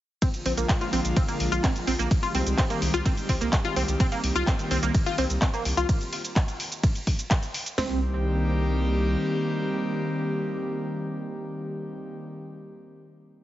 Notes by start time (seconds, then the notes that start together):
0.22 D3 F3 G#3 A#3 C4 F4, kick, closed hi-hat, ride, shaker
0.34 closed hi-hat, shaker
0.46 A#1 C4, open hi-hat
0.57 A#1 A#3, closed hi-hat, shaker
0.69 kick, clap, closed hi-hat, ride, shaker
0.81 F4, closed hi-hat, shaker
0.93 A#1 C4, open hi-hat
1.05 A#1, closed hi-hat, shaker
1.16 C4, kick, closed hi-hat, ride, shaker
1.28 A#3, closed hi-hat, shaker
1.40 A#1, open hi-hat
1.52 A#1 F4, closed hi-hat, shaker
1.64 C4, kick, clap, closed hi-hat, ride, shaker
1.76 closed hi-hat, shaker
1.87 A#1 C4, open hi-hat
1.99 A#1 A#3, closed hi-hat, shaker
2.11 D#3 G3 G#3 C4 G4, kick, closed hi-hat, ride, shaker
2.23 F4, closed hi-hat, shaker
2.35 C2 C4, open hi-hat
2.46 C2, closed hi-hat, shaker
2.58 C4, kick, clap, closed hi-hat, ride, shaker
2.70 A#3, closed hi-hat, shaker
2.82 C2, open hi-hat
2.94 C2 F4, shaker
3.06 C4, kick, closed hi-hat, ride, shaker
3.17 closed hi-hat, shaker
3.29 C2 C4, kick, open hi-hat
3.41 C2 A#3, closed hi-hat, shaker
3.53 kick, clap, closed hi-hat, ride, shaker
3.65 F4, closed hi-hat, shaker
3.76 C2 C4, open hi-hat
3.88 C2, closed hi-hat, shaker
4.00 D#3 A#3 C4, kick, closed hi-hat, ride, shaker
4.12 A#3, closed hi-hat, shaker
4.24 C2, open hi-hat
4.35 C2 F4, closed hi-hat, shaker
4.47 C4, kick, clap, closed hi-hat, ride, shaker
4.59 closed hi-hat, shaker
4.71 C2 C4, open hi-hat
4.83 C2 A#3, closed hi-hat, shaker
4.94 kick, closed hi-hat, ride, shaker
5.06 F4, closed hi-hat, shaker
5.18 C2 C4, open hi-hat
5.30 C2, closed hi-hat, shaker
5.42 C4, kick, clap, closed hi-hat, ride, shaker
5.54 A#3, closed hi-hat, shaker
5.65 C2, open hi-hat
5.77 C2 F4, closed hi-hat, shaker
5.89 kick, closed hi-hat, ride, shaker
6.01 closed hi-hat, shaker
6.13 open hi-hat
6.24 closed hi-hat, shaker
6.36 kick, clap, closed hi-hat, ride, shaker
6.48 closed hi-hat, shaker
6.60 open hi-hat
6.72 closed hi-hat, shaker
6.83 kick, closed hi-hat, ride, shaker
6.95 closed hi-hat, shaker
7.07 kick, open hi-hat
7.19 closed hi-hat, shaker
7.31 kick, clap, closed hi-hat, ride, shaker
7.43 closed hi-hat, shaker
7.54 open hi-hat
7.66 closed hi-hat, shaker
7.78 C2 D#3 G3 A#3 C4 G4, snare, floor tom, open hi-hat